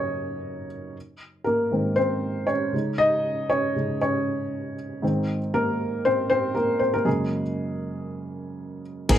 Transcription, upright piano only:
Already playing: F#2 C#3 A#3 C#4 D#4 C#5 D#5
1.44 A#3 A#4
1.71 G#2 D#3 C4
1.96 C4 C5
2.47 C#4 C#5
2.72 C#3 G#3 D#4
2.98 D#4 D#5
3.50 C#4 C#5
3.76 C#3 G#3 D#4
4.02 C#4 C#5
5.02 G#2 D#3 C4
5.54 A#3 A#4
6.05 C4 C5
6.30 C4 C5
6.55 A#3 A#4
6.79 C4 C5
6.94 A#3 A#4
7.05 F#2 C#3 G#3 A#3 G#4
9.09 G#2 A#3 C4 D#4 G#4

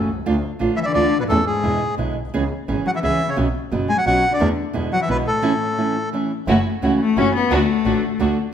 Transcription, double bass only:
0.09 C2
0.26 D2
0.61 A1
0.95 D2
1.30 E2
1.64 E2
1.99 B1
2.16 B1
2.33 C#2
2.69 G#1
3.04 C#2
3.38 B1
3.73 F#1
4.07 B1
4.40 E2
4.76 E2
5.09 B1
6.48 F#1
6.83 C#2
7.17 F#1
7.51 D2
7.86 A1
8.20 D2

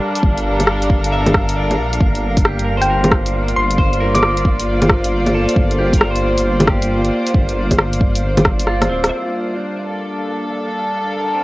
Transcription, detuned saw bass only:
0.23 G1
1.78 A#1
2.01 G1
3.56 G1
3.78 G1
5.04 G1
5.56 G1
7.34 G1
8.90 D1

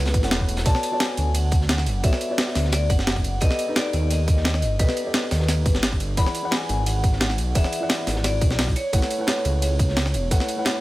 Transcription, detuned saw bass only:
Already playing: C#2
0.14 A1
0.23 E1
0.31 E1
0.66 B1
1.18 D2
1.86 F#1
2.04 B1
2.55 D2
2.90 F#1
3.42 B1
3.93 D#2
4.62 G1
4.80 B1
5.31 D#2
5.66 G1
6.17 E1
6.69 G#1
7.38 B1
7.55 E1
8.07 G#1
8.41 B1
8.93 A1
9.45 C#2
10.14 E1
10.31 A1

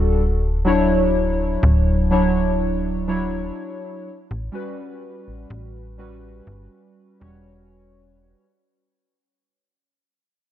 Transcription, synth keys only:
Already playing: G3 D4 F#4 A4
0.65 F#3 D4 E4 C#5
2.10 F#3 D4 E4 C#5
3.08 F#3 D4 E4 C#5
4.52 G3 C#4 F#4 B4
5.98 G3 C#4 F#4 B4
7.20 G3 C#4 F#4 C#5

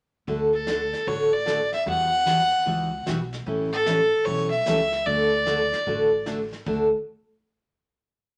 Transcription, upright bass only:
0.28 D2
1.07 A1
1.87 E2
2.67 C#2
3.08 B1
3.47 A1
4.27 B1
4.68 C#2
5.07 D2
5.87 A1
6.66 D2

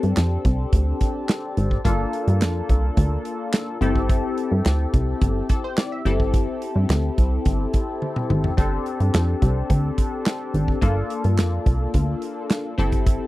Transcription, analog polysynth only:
Already playing: C4 D4 G4 A4
1.84 A#3 D4 F4 A4
3.81 C4 E4 G4 A4
5.50 A4
5.64 C5
5.78 D5
5.92 E5
6.05 C4 E4 G4 A4
8.57 C4 D4 G4 A4
10.81 A#3 D4 F4 A4
12.78 C4 E4 G4 A4

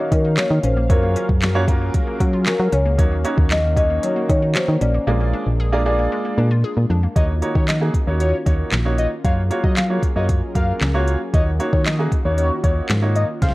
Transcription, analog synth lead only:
7.16 D#5
7.55 C#5
7.68 D#5
8.07 C#5
8.20 C#5
8.47 C#5
8.99 D#5
9.25 F5
9.64 D#5
9.77 F5
10.16 D#5
10.56 F5
11.34 D#5
11.73 C#5
11.86 D#5
12.25 C#5
12.38 C#5
12.64 C#5
13.16 D#5
13.42 F5

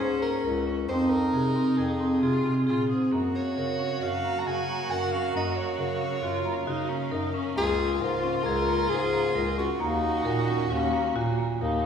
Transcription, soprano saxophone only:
0.00 C5
0.22 A#4
0.88 C5
1.10 A#4
1.77 G#4
3.35 C#5
4.03 F5
4.39 A#5
4.47 G#5
4.91 F#5
5.12 F5
5.36 D#5
5.56 C#5
7.58 G#4
8.01 F4
8.44 A#4
8.89 G#4
9.59 F#4

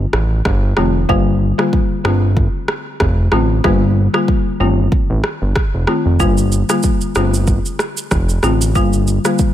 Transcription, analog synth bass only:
0.13 A1
0.46 G1
0.77 F1
1.09 G1
2.05 G1
3.01 F1
3.32 A1
3.64 G1
4.60 G1
5.10 A1
5.42 G1
5.74 F1
6.06 F1
6.20 G1
7.16 G1
8.12 F1
8.43 A1
8.75 G1

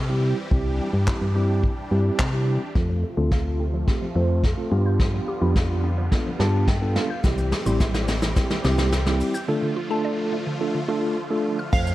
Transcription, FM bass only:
Already playing: C3
0.51 C2
0.93 G2
1.21 G2
1.91 G2
2.19 C3
2.76 F2
3.17 D2
4.15 F2
4.72 G2
5.42 F2
6.40 G2
7.24 C2
7.66 A1
8.64 C2
11.73 F2

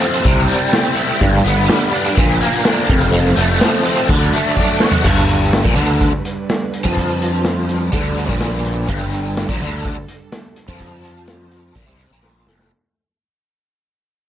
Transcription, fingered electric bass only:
0.25 C2
1.21 G1
1.44 G1
2.17 A#1
2.89 F1
3.37 F1
4.09 D2
5.05 G1
5.65 A#1
5.76 D2
6.85 F2
7.93 D2
8.29 A#1
8.89 G1
9.49 A#1
9.61 D2
10.68 F2
11.76 A#1
11.88 C2
12.11 A#1
12.47 F1

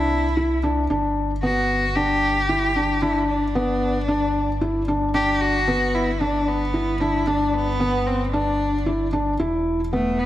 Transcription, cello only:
Already playing: E4
1.43 F#4
1.96 G4
3.02 E4
3.29 D4
5.15 G4
5.41 F#4
5.95 E4
6.21 D4
6.48 B3
7.01 E4
7.27 D4
7.54 B3
8.06 C4
8.33 D4
9.93 A3
10.19 B3

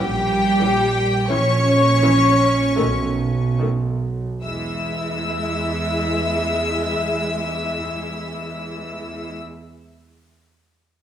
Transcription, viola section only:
0.59 E3 C#4
1.29 E3 C#4
2.02 E3 C#4
2.77 D#3 A3
3.60 D#3 A3
4.43 G#3 E4

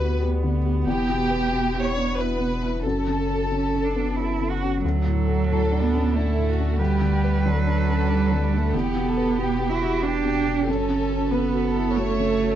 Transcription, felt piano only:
Already playing: D2 D3 G4 B4
0.00 F#4
0.21 G4
0.44 D3
0.65 G4
0.87 E2
1.09 B2
1.30 B4
1.52 B2
1.75 E4
1.96 D4
2.18 E4
2.40 B2
2.63 E4
2.86 F#2
3.07 C#3
3.30 A4
3.51 C#3
3.75 C#4
3.96 B3
4.17 C#4
4.40 C#3
4.62 C#4
4.85 D2
5.06 A2
5.28 A4
5.50 A2
5.71 D4
5.93 C#4
6.16 D4
6.38 A2
6.59 D4
6.80 D2
7.01 D3
7.24 B4
7.46 D3
7.67 D4
7.89 C#4
8.10 D4
8.32 D3
8.53 D4
8.74 E2
8.95 B2
9.17 B4
9.39 B2
9.60 G4
9.82 F#4
10.03 G4
10.25 B2
10.46 G4
10.67 F#2
10.89 C#3
11.10 A4
11.32 C#3
11.54 F#4
11.76 E4
11.98 F#4
12.19 C#3
12.42 F#4

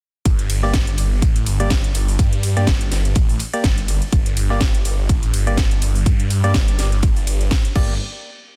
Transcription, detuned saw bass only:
0.25 G1
0.50 G1
0.74 G1
0.98 G1
1.22 A1
1.46 G1
1.84 G1
2.19 G2
2.57 G2
2.67 G1
2.92 G1
3.16 A1
3.64 G1
4.13 G1
4.37 G1
4.61 G1
4.85 G1
5.09 A1
5.34 G1
5.71 G1
6.06 G2
6.44 G2
6.55 G1
6.79 G1
7.03 G1
7.76 G1

